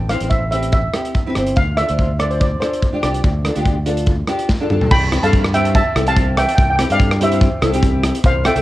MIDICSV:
0, 0, Header, 1, 5, 480
1, 0, Start_track
1, 0, Key_signature, 0, "major"
1, 0, Tempo, 417246
1, 1811, Time_signature, 4, 2, 24, 8
1, 9914, End_track
2, 0, Start_track
2, 0, Title_t, "Steel pan"
2, 0, Program_c, 0, 114
2, 0, Note_on_c, 0, 79, 76
2, 111, Note_on_c, 0, 77, 80
2, 124, Note_off_c, 0, 79, 0
2, 222, Note_off_c, 0, 77, 0
2, 344, Note_on_c, 0, 76, 80
2, 573, Note_off_c, 0, 76, 0
2, 587, Note_on_c, 0, 76, 79
2, 822, Note_off_c, 0, 76, 0
2, 836, Note_on_c, 0, 76, 83
2, 1518, Note_off_c, 0, 76, 0
2, 1800, Note_on_c, 0, 77, 89
2, 1911, Note_off_c, 0, 77, 0
2, 2035, Note_on_c, 0, 76, 88
2, 2490, Note_off_c, 0, 76, 0
2, 2525, Note_on_c, 0, 74, 80
2, 2654, Note_on_c, 0, 72, 63
2, 2659, Note_off_c, 0, 74, 0
2, 2762, Note_off_c, 0, 72, 0
2, 2768, Note_on_c, 0, 74, 75
2, 2994, Note_off_c, 0, 74, 0
2, 2995, Note_on_c, 0, 72, 70
2, 3486, Note_on_c, 0, 74, 67
2, 3500, Note_off_c, 0, 72, 0
2, 5125, Note_off_c, 0, 74, 0
2, 5649, Note_on_c, 0, 83, 109
2, 5655, Note_on_c, 0, 79, 83
2, 5992, Note_off_c, 0, 83, 0
2, 5995, Note_off_c, 0, 79, 0
2, 6017, Note_on_c, 0, 81, 98
2, 6026, Note_on_c, 0, 77, 83
2, 6352, Note_off_c, 0, 77, 0
2, 6373, Note_on_c, 0, 79, 95
2, 6376, Note_on_c, 0, 76, 80
2, 6382, Note_off_c, 0, 81, 0
2, 6597, Note_off_c, 0, 76, 0
2, 6617, Note_on_c, 0, 76, 82
2, 6617, Note_on_c, 0, 81, 107
2, 6620, Note_off_c, 0, 79, 0
2, 6955, Note_off_c, 0, 76, 0
2, 6955, Note_off_c, 0, 81, 0
2, 6989, Note_on_c, 0, 77, 79
2, 6991, Note_on_c, 0, 81, 109
2, 7312, Note_off_c, 0, 77, 0
2, 7336, Note_on_c, 0, 76, 70
2, 7339, Note_on_c, 0, 79, 95
2, 7348, Note_off_c, 0, 81, 0
2, 7416, Note_off_c, 0, 79, 0
2, 7417, Note_off_c, 0, 76, 0
2, 7430, Note_on_c, 0, 79, 68
2, 7504, Note_off_c, 0, 79, 0
2, 7531, Note_on_c, 0, 79, 81
2, 7596, Note_off_c, 0, 79, 0
2, 7610, Note_on_c, 0, 79, 68
2, 7683, Note_off_c, 0, 79, 0
2, 7707, Note_on_c, 0, 79, 81
2, 7757, Note_off_c, 0, 79, 0
2, 7771, Note_on_c, 0, 79, 71
2, 7845, Note_off_c, 0, 79, 0
2, 7958, Note_on_c, 0, 74, 65
2, 7958, Note_on_c, 0, 77, 91
2, 8275, Note_off_c, 0, 74, 0
2, 8309, Note_off_c, 0, 77, 0
2, 8312, Note_on_c, 0, 72, 67
2, 8321, Note_on_c, 0, 76, 88
2, 8745, Note_off_c, 0, 72, 0
2, 8750, Note_off_c, 0, 76, 0
2, 9500, Note_on_c, 0, 72, 70
2, 9501, Note_on_c, 0, 77, 96
2, 9715, Note_off_c, 0, 72, 0
2, 9715, Note_off_c, 0, 77, 0
2, 9732, Note_on_c, 0, 79, 92
2, 9733, Note_on_c, 0, 76, 73
2, 9811, Note_off_c, 0, 79, 0
2, 9812, Note_off_c, 0, 76, 0
2, 9835, Note_on_c, 0, 79, 68
2, 9903, Note_off_c, 0, 79, 0
2, 9914, End_track
3, 0, Start_track
3, 0, Title_t, "Nylon-string guitar"
3, 0, Program_c, 1, 24
3, 107, Note_on_c, 1, 60, 59
3, 114, Note_on_c, 1, 64, 53
3, 122, Note_on_c, 1, 72, 66
3, 191, Note_off_c, 1, 60, 0
3, 196, Note_off_c, 1, 64, 0
3, 197, Note_off_c, 1, 72, 0
3, 242, Note_on_c, 1, 60, 56
3, 247, Note_on_c, 1, 64, 51
3, 250, Note_on_c, 1, 72, 66
3, 462, Note_off_c, 1, 60, 0
3, 464, Note_off_c, 1, 64, 0
3, 466, Note_off_c, 1, 72, 0
3, 590, Note_on_c, 1, 60, 63
3, 599, Note_on_c, 1, 64, 56
3, 605, Note_on_c, 1, 67, 64
3, 890, Note_off_c, 1, 60, 0
3, 894, Note_off_c, 1, 64, 0
3, 897, Note_off_c, 1, 67, 0
3, 1075, Note_on_c, 1, 60, 64
3, 1081, Note_on_c, 1, 67, 70
3, 1084, Note_on_c, 1, 64, 58
3, 1299, Note_off_c, 1, 60, 0
3, 1303, Note_off_c, 1, 64, 0
3, 1303, Note_off_c, 1, 67, 0
3, 1454, Note_on_c, 1, 60, 79
3, 1461, Note_on_c, 1, 64, 72
3, 1465, Note_on_c, 1, 71, 88
3, 1523, Note_off_c, 1, 60, 0
3, 1527, Note_off_c, 1, 64, 0
3, 1529, Note_off_c, 1, 71, 0
3, 1564, Note_on_c, 1, 60, 78
3, 1572, Note_on_c, 1, 64, 69
3, 1581, Note_on_c, 1, 72, 83
3, 1807, Note_off_c, 1, 60, 0
3, 1811, Note_off_c, 1, 64, 0
3, 1816, Note_off_c, 1, 72, 0
3, 2044, Note_on_c, 1, 62, 60
3, 2051, Note_on_c, 1, 65, 58
3, 2057, Note_on_c, 1, 69, 69
3, 2124, Note_off_c, 1, 62, 0
3, 2125, Note_off_c, 1, 65, 0
3, 2130, Note_off_c, 1, 69, 0
3, 2168, Note_on_c, 1, 62, 60
3, 2176, Note_on_c, 1, 65, 56
3, 2183, Note_on_c, 1, 72, 71
3, 2388, Note_off_c, 1, 62, 0
3, 2392, Note_off_c, 1, 65, 0
3, 2396, Note_off_c, 1, 72, 0
3, 2518, Note_on_c, 1, 62, 65
3, 2524, Note_on_c, 1, 65, 56
3, 2533, Note_on_c, 1, 72, 72
3, 2816, Note_off_c, 1, 62, 0
3, 2819, Note_off_c, 1, 65, 0
3, 2824, Note_off_c, 1, 72, 0
3, 3002, Note_on_c, 1, 62, 64
3, 3006, Note_on_c, 1, 65, 62
3, 3011, Note_on_c, 1, 69, 70
3, 3225, Note_off_c, 1, 62, 0
3, 3227, Note_off_c, 1, 65, 0
3, 3230, Note_off_c, 1, 69, 0
3, 3369, Note_on_c, 1, 62, 70
3, 3373, Note_on_c, 1, 65, 60
3, 3380, Note_on_c, 1, 67, 77
3, 3443, Note_off_c, 1, 62, 0
3, 3445, Note_off_c, 1, 65, 0
3, 3448, Note_off_c, 1, 67, 0
3, 3480, Note_on_c, 1, 62, 66
3, 3489, Note_on_c, 1, 65, 63
3, 3498, Note_on_c, 1, 67, 74
3, 3779, Note_off_c, 1, 62, 0
3, 3781, Note_off_c, 1, 65, 0
3, 3787, Note_off_c, 1, 67, 0
3, 3969, Note_on_c, 1, 62, 65
3, 3976, Note_on_c, 1, 65, 55
3, 3982, Note_on_c, 1, 69, 68
3, 4048, Note_off_c, 1, 62, 0
3, 4051, Note_off_c, 1, 65, 0
3, 4054, Note_off_c, 1, 69, 0
3, 4087, Note_on_c, 1, 62, 76
3, 4096, Note_on_c, 1, 65, 69
3, 4102, Note_on_c, 1, 67, 83
3, 4309, Note_off_c, 1, 62, 0
3, 4314, Note_off_c, 1, 65, 0
3, 4317, Note_off_c, 1, 67, 0
3, 4437, Note_on_c, 1, 62, 76
3, 4441, Note_on_c, 1, 65, 72
3, 4445, Note_on_c, 1, 69, 88
3, 4737, Note_off_c, 1, 65, 0
3, 4738, Note_off_c, 1, 62, 0
3, 4741, Note_off_c, 1, 69, 0
3, 4919, Note_on_c, 1, 62, 78
3, 4926, Note_on_c, 1, 65, 65
3, 4931, Note_on_c, 1, 67, 83
3, 5144, Note_off_c, 1, 62, 0
3, 5148, Note_off_c, 1, 65, 0
3, 5150, Note_off_c, 1, 67, 0
3, 5293, Note_on_c, 1, 62, 84
3, 5300, Note_on_c, 1, 65, 76
3, 5305, Note_on_c, 1, 69, 93
3, 5365, Note_off_c, 1, 62, 0
3, 5369, Note_off_c, 1, 65, 0
3, 5372, Note_off_c, 1, 69, 0
3, 5404, Note_on_c, 1, 62, 79
3, 5409, Note_on_c, 1, 65, 72
3, 5418, Note_on_c, 1, 69, 93
3, 5649, Note_off_c, 1, 62, 0
3, 5652, Note_off_c, 1, 65, 0
3, 5656, Note_off_c, 1, 69, 0
3, 5873, Note_on_c, 1, 60, 72
3, 5882, Note_on_c, 1, 64, 69
3, 5894, Note_on_c, 1, 67, 80
3, 5960, Note_off_c, 1, 60, 0
3, 5964, Note_off_c, 1, 64, 0
3, 5970, Note_off_c, 1, 67, 0
3, 6007, Note_on_c, 1, 60, 73
3, 6014, Note_on_c, 1, 64, 63
3, 6020, Note_on_c, 1, 69, 83
3, 6228, Note_off_c, 1, 60, 0
3, 6231, Note_off_c, 1, 64, 0
3, 6234, Note_off_c, 1, 69, 0
3, 6369, Note_on_c, 1, 60, 81
3, 6375, Note_on_c, 1, 64, 68
3, 6384, Note_on_c, 1, 67, 87
3, 6661, Note_off_c, 1, 60, 0
3, 6664, Note_off_c, 1, 64, 0
3, 6668, Note_off_c, 1, 67, 0
3, 6846, Note_on_c, 1, 60, 73
3, 6851, Note_on_c, 1, 64, 73
3, 6858, Note_on_c, 1, 69, 88
3, 6925, Note_off_c, 1, 60, 0
3, 6927, Note_off_c, 1, 64, 0
3, 6931, Note_off_c, 1, 69, 0
3, 6966, Note_on_c, 1, 60, 74
3, 6976, Note_on_c, 1, 52, 67
3, 6982, Note_on_c, 1, 67, 83
3, 7473, Note_off_c, 1, 60, 0
3, 7478, Note_off_c, 1, 52, 0
3, 7480, Note_off_c, 1, 67, 0
3, 7798, Note_on_c, 1, 60, 75
3, 7803, Note_on_c, 1, 64, 68
3, 7812, Note_on_c, 1, 67, 78
3, 7879, Note_off_c, 1, 60, 0
3, 7881, Note_off_c, 1, 64, 0
3, 7886, Note_off_c, 1, 67, 0
3, 7931, Note_on_c, 1, 60, 77
3, 7938, Note_on_c, 1, 64, 72
3, 7944, Note_on_c, 1, 69, 76
3, 8147, Note_off_c, 1, 60, 0
3, 8150, Note_off_c, 1, 64, 0
3, 8153, Note_off_c, 1, 69, 0
3, 8288, Note_on_c, 1, 60, 81
3, 8294, Note_on_c, 1, 64, 68
3, 8299, Note_on_c, 1, 67, 83
3, 8578, Note_off_c, 1, 60, 0
3, 8579, Note_off_c, 1, 64, 0
3, 8582, Note_off_c, 1, 67, 0
3, 8759, Note_on_c, 1, 60, 74
3, 8764, Note_on_c, 1, 64, 72
3, 8775, Note_on_c, 1, 69, 88
3, 8838, Note_off_c, 1, 60, 0
3, 8840, Note_off_c, 1, 64, 0
3, 8846, Note_off_c, 1, 69, 0
3, 8885, Note_on_c, 1, 60, 91
3, 8892, Note_on_c, 1, 64, 82
3, 8901, Note_on_c, 1, 67, 97
3, 9389, Note_off_c, 1, 60, 0
3, 9393, Note_off_c, 1, 64, 0
3, 9397, Note_off_c, 1, 67, 0
3, 9709, Note_on_c, 1, 60, 75
3, 9715, Note_on_c, 1, 65, 72
3, 9723, Note_on_c, 1, 69, 87
3, 9791, Note_off_c, 1, 60, 0
3, 9794, Note_off_c, 1, 65, 0
3, 9798, Note_off_c, 1, 69, 0
3, 9840, Note_on_c, 1, 60, 77
3, 9846, Note_on_c, 1, 65, 68
3, 9848, Note_on_c, 1, 69, 83
3, 9914, Note_off_c, 1, 60, 0
3, 9914, Note_off_c, 1, 65, 0
3, 9914, Note_off_c, 1, 69, 0
3, 9914, End_track
4, 0, Start_track
4, 0, Title_t, "Fingered electric bass"
4, 0, Program_c, 2, 33
4, 0, Note_on_c, 2, 33, 82
4, 166, Note_off_c, 2, 33, 0
4, 240, Note_on_c, 2, 33, 69
4, 1001, Note_off_c, 2, 33, 0
4, 1567, Note_on_c, 2, 31, 71
4, 1757, Note_off_c, 2, 31, 0
4, 1803, Note_on_c, 2, 38, 83
4, 2094, Note_off_c, 2, 38, 0
4, 2183, Note_on_c, 2, 38, 75
4, 2937, Note_off_c, 2, 38, 0
4, 3494, Note_on_c, 2, 36, 73
4, 3683, Note_off_c, 2, 36, 0
4, 3729, Note_on_c, 2, 38, 84
4, 4019, Note_off_c, 2, 38, 0
4, 4100, Note_on_c, 2, 38, 74
4, 4855, Note_off_c, 2, 38, 0
4, 5408, Note_on_c, 2, 43, 76
4, 5599, Note_off_c, 2, 43, 0
4, 5647, Note_on_c, 2, 36, 107
4, 5937, Note_off_c, 2, 36, 0
4, 6013, Note_on_c, 2, 43, 87
4, 6669, Note_off_c, 2, 43, 0
4, 6848, Note_on_c, 2, 36, 91
4, 7413, Note_off_c, 2, 36, 0
4, 7566, Note_on_c, 2, 36, 110
4, 7854, Note_off_c, 2, 36, 0
4, 7935, Note_on_c, 2, 43, 80
4, 8588, Note_off_c, 2, 43, 0
4, 8762, Note_on_c, 2, 36, 97
4, 9327, Note_off_c, 2, 36, 0
4, 9479, Note_on_c, 2, 36, 114
4, 9767, Note_off_c, 2, 36, 0
4, 9843, Note_on_c, 2, 36, 83
4, 9914, Note_off_c, 2, 36, 0
4, 9914, End_track
5, 0, Start_track
5, 0, Title_t, "Drums"
5, 111, Note_on_c, 9, 37, 63
5, 111, Note_on_c, 9, 42, 73
5, 226, Note_off_c, 9, 37, 0
5, 226, Note_off_c, 9, 42, 0
5, 237, Note_on_c, 9, 42, 57
5, 352, Note_off_c, 9, 42, 0
5, 352, Note_on_c, 9, 42, 55
5, 357, Note_on_c, 9, 36, 72
5, 467, Note_off_c, 9, 42, 0
5, 472, Note_off_c, 9, 36, 0
5, 602, Note_on_c, 9, 42, 74
5, 717, Note_off_c, 9, 42, 0
5, 723, Note_on_c, 9, 42, 56
5, 834, Note_off_c, 9, 42, 0
5, 834, Note_on_c, 9, 42, 57
5, 840, Note_on_c, 9, 36, 92
5, 949, Note_off_c, 9, 42, 0
5, 955, Note_off_c, 9, 36, 0
5, 1080, Note_on_c, 9, 37, 71
5, 1080, Note_on_c, 9, 42, 70
5, 1195, Note_off_c, 9, 37, 0
5, 1195, Note_off_c, 9, 42, 0
5, 1211, Note_on_c, 9, 42, 52
5, 1322, Note_off_c, 9, 42, 0
5, 1322, Note_on_c, 9, 42, 56
5, 1324, Note_on_c, 9, 36, 72
5, 1437, Note_off_c, 9, 42, 0
5, 1439, Note_off_c, 9, 36, 0
5, 1559, Note_on_c, 9, 37, 74
5, 1559, Note_on_c, 9, 42, 73
5, 1674, Note_off_c, 9, 37, 0
5, 1674, Note_off_c, 9, 42, 0
5, 1687, Note_on_c, 9, 42, 53
5, 1795, Note_off_c, 9, 42, 0
5, 1795, Note_on_c, 9, 42, 52
5, 1806, Note_on_c, 9, 36, 96
5, 1910, Note_off_c, 9, 42, 0
5, 1921, Note_off_c, 9, 36, 0
5, 2041, Note_on_c, 9, 37, 67
5, 2041, Note_on_c, 9, 42, 70
5, 2156, Note_off_c, 9, 37, 0
5, 2156, Note_off_c, 9, 42, 0
5, 2171, Note_on_c, 9, 42, 56
5, 2286, Note_off_c, 9, 42, 0
5, 2286, Note_on_c, 9, 42, 51
5, 2289, Note_on_c, 9, 36, 78
5, 2401, Note_off_c, 9, 42, 0
5, 2404, Note_off_c, 9, 36, 0
5, 2529, Note_on_c, 9, 37, 72
5, 2529, Note_on_c, 9, 42, 66
5, 2644, Note_off_c, 9, 37, 0
5, 2644, Note_off_c, 9, 42, 0
5, 2655, Note_on_c, 9, 42, 53
5, 2768, Note_off_c, 9, 42, 0
5, 2768, Note_on_c, 9, 42, 50
5, 2772, Note_on_c, 9, 36, 95
5, 2883, Note_off_c, 9, 42, 0
5, 2887, Note_off_c, 9, 36, 0
5, 3014, Note_on_c, 9, 37, 74
5, 3014, Note_on_c, 9, 42, 68
5, 3129, Note_off_c, 9, 37, 0
5, 3129, Note_off_c, 9, 42, 0
5, 3145, Note_on_c, 9, 42, 49
5, 3249, Note_off_c, 9, 42, 0
5, 3249, Note_on_c, 9, 42, 53
5, 3251, Note_on_c, 9, 36, 75
5, 3364, Note_off_c, 9, 42, 0
5, 3366, Note_off_c, 9, 36, 0
5, 3488, Note_on_c, 9, 37, 79
5, 3488, Note_on_c, 9, 42, 75
5, 3603, Note_off_c, 9, 37, 0
5, 3603, Note_off_c, 9, 42, 0
5, 3617, Note_on_c, 9, 42, 53
5, 3727, Note_off_c, 9, 42, 0
5, 3727, Note_on_c, 9, 42, 53
5, 3729, Note_on_c, 9, 36, 96
5, 3842, Note_off_c, 9, 42, 0
5, 3844, Note_off_c, 9, 36, 0
5, 3968, Note_on_c, 9, 37, 68
5, 3968, Note_on_c, 9, 42, 76
5, 4083, Note_off_c, 9, 37, 0
5, 4083, Note_off_c, 9, 42, 0
5, 4092, Note_on_c, 9, 42, 57
5, 4205, Note_off_c, 9, 42, 0
5, 4205, Note_on_c, 9, 42, 55
5, 4206, Note_on_c, 9, 36, 79
5, 4320, Note_off_c, 9, 42, 0
5, 4321, Note_off_c, 9, 36, 0
5, 4442, Note_on_c, 9, 42, 76
5, 4557, Note_off_c, 9, 42, 0
5, 4569, Note_on_c, 9, 42, 61
5, 4676, Note_off_c, 9, 42, 0
5, 4676, Note_on_c, 9, 42, 57
5, 4683, Note_on_c, 9, 36, 92
5, 4791, Note_off_c, 9, 42, 0
5, 4798, Note_off_c, 9, 36, 0
5, 4917, Note_on_c, 9, 37, 74
5, 4917, Note_on_c, 9, 42, 69
5, 5032, Note_off_c, 9, 37, 0
5, 5032, Note_off_c, 9, 42, 0
5, 5047, Note_on_c, 9, 42, 58
5, 5162, Note_off_c, 9, 42, 0
5, 5162, Note_on_c, 9, 38, 51
5, 5166, Note_on_c, 9, 36, 77
5, 5277, Note_off_c, 9, 38, 0
5, 5281, Note_off_c, 9, 36, 0
5, 5405, Note_on_c, 9, 45, 74
5, 5520, Note_off_c, 9, 45, 0
5, 5535, Note_on_c, 9, 43, 71
5, 5644, Note_on_c, 9, 49, 105
5, 5648, Note_on_c, 9, 36, 123
5, 5650, Note_off_c, 9, 43, 0
5, 5759, Note_off_c, 9, 49, 0
5, 5763, Note_off_c, 9, 36, 0
5, 5890, Note_on_c, 9, 37, 88
5, 5890, Note_on_c, 9, 42, 86
5, 6005, Note_off_c, 9, 37, 0
5, 6005, Note_off_c, 9, 42, 0
5, 6019, Note_on_c, 9, 42, 70
5, 6131, Note_on_c, 9, 36, 95
5, 6134, Note_off_c, 9, 42, 0
5, 6135, Note_on_c, 9, 42, 62
5, 6246, Note_off_c, 9, 36, 0
5, 6250, Note_off_c, 9, 42, 0
5, 6260, Note_on_c, 9, 37, 91
5, 6371, Note_on_c, 9, 42, 88
5, 6376, Note_off_c, 9, 37, 0
5, 6486, Note_off_c, 9, 42, 0
5, 6498, Note_on_c, 9, 42, 61
5, 6610, Note_off_c, 9, 42, 0
5, 6610, Note_on_c, 9, 36, 114
5, 6610, Note_on_c, 9, 42, 60
5, 6725, Note_off_c, 9, 36, 0
5, 6725, Note_off_c, 9, 42, 0
5, 6853, Note_on_c, 9, 37, 90
5, 6853, Note_on_c, 9, 42, 84
5, 6968, Note_off_c, 9, 37, 0
5, 6968, Note_off_c, 9, 42, 0
5, 6976, Note_on_c, 9, 42, 62
5, 7089, Note_on_c, 9, 36, 92
5, 7091, Note_off_c, 9, 42, 0
5, 7095, Note_on_c, 9, 42, 66
5, 7204, Note_off_c, 9, 36, 0
5, 7210, Note_off_c, 9, 42, 0
5, 7329, Note_on_c, 9, 37, 95
5, 7329, Note_on_c, 9, 42, 87
5, 7444, Note_off_c, 9, 37, 0
5, 7444, Note_off_c, 9, 42, 0
5, 7459, Note_on_c, 9, 42, 64
5, 7567, Note_off_c, 9, 42, 0
5, 7567, Note_on_c, 9, 42, 65
5, 7568, Note_on_c, 9, 36, 115
5, 7682, Note_off_c, 9, 42, 0
5, 7683, Note_off_c, 9, 36, 0
5, 7806, Note_on_c, 9, 37, 90
5, 7806, Note_on_c, 9, 42, 93
5, 7921, Note_off_c, 9, 37, 0
5, 7921, Note_off_c, 9, 42, 0
5, 7935, Note_on_c, 9, 42, 71
5, 8047, Note_off_c, 9, 42, 0
5, 8047, Note_on_c, 9, 36, 95
5, 8047, Note_on_c, 9, 42, 72
5, 8162, Note_off_c, 9, 36, 0
5, 8162, Note_off_c, 9, 42, 0
5, 8180, Note_on_c, 9, 37, 96
5, 8292, Note_on_c, 9, 42, 93
5, 8295, Note_off_c, 9, 37, 0
5, 8407, Note_off_c, 9, 42, 0
5, 8414, Note_on_c, 9, 42, 70
5, 8525, Note_on_c, 9, 36, 117
5, 8528, Note_off_c, 9, 42, 0
5, 8528, Note_on_c, 9, 42, 71
5, 8640, Note_off_c, 9, 36, 0
5, 8643, Note_off_c, 9, 42, 0
5, 8767, Note_on_c, 9, 37, 91
5, 8767, Note_on_c, 9, 42, 87
5, 8882, Note_off_c, 9, 37, 0
5, 8882, Note_off_c, 9, 42, 0
5, 8897, Note_on_c, 9, 42, 67
5, 9003, Note_on_c, 9, 36, 92
5, 9008, Note_off_c, 9, 42, 0
5, 9008, Note_on_c, 9, 42, 69
5, 9118, Note_off_c, 9, 36, 0
5, 9123, Note_off_c, 9, 42, 0
5, 9244, Note_on_c, 9, 37, 99
5, 9244, Note_on_c, 9, 42, 94
5, 9359, Note_off_c, 9, 37, 0
5, 9359, Note_off_c, 9, 42, 0
5, 9375, Note_on_c, 9, 42, 65
5, 9480, Note_on_c, 9, 36, 114
5, 9484, Note_off_c, 9, 42, 0
5, 9484, Note_on_c, 9, 42, 64
5, 9595, Note_off_c, 9, 36, 0
5, 9599, Note_off_c, 9, 42, 0
5, 9723, Note_on_c, 9, 37, 92
5, 9723, Note_on_c, 9, 42, 87
5, 9838, Note_off_c, 9, 37, 0
5, 9838, Note_off_c, 9, 42, 0
5, 9847, Note_on_c, 9, 42, 68
5, 9914, Note_off_c, 9, 42, 0
5, 9914, End_track
0, 0, End_of_file